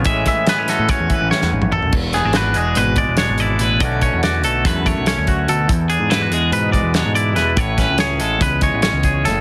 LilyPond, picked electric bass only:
\new Staff \with { instrumentName = "Picked electric bass" } { \clef bass \time 9/8 \key a \major \tempo 4. = 96 a,,8 r4 r16 a,16 r16 e,16 r16 a,,16 r16 e,16 a,,8. a,,16 | e,,8. gis,,8. e,,8 gis,,8. e,,8 gis,,8. a,,8 | b,,8. e,8. b,,8 e,8. b,,8 d,8. d,8 | e,8. gis,8. e,8 gis,8. e,8 gis,8. e,8 |
a,,8. cis,8. a,,8 cis,8. a,,8 cis,8. fis,,8 | }